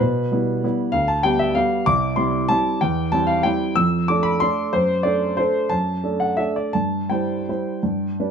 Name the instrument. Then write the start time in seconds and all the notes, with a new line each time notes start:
grand piano
0.00 B2 B4
0.32 G3 B3 E4
0.64 G3 B3 E4
0.92 D2 F5
1.08 A5
1.23 G3 B3 G4 G5
1.39 E5
1.55 G3 B3 G4 F5
1.86 C2 D6
2.16 G3 C4 E4 C6
2.49 G3 C4 E4 A5
2.81 E2 G5
3.12 G3 C4 E4 A5
3.27 F5
3.43 G3 C4 E4 G5
3.76 F2 E6
4.08 A3 D4 A4 D6
4.23 B5
4.40 A3 D4 A4 C6
4.73 F#2 C5
5.03 A3 D4 A4 D5
5.37 A3 D4 A4 C5
5.69 F#2 A5
6.04 A3 D4 A4
6.20 F#5
6.37 A3 D4 A4 E5
6.56 D5
6.73 G2 A5
7.10 G3 E4 C5 G5
7.49 G3 E4 C5
7.83 G2
8.20 G3 D4 B4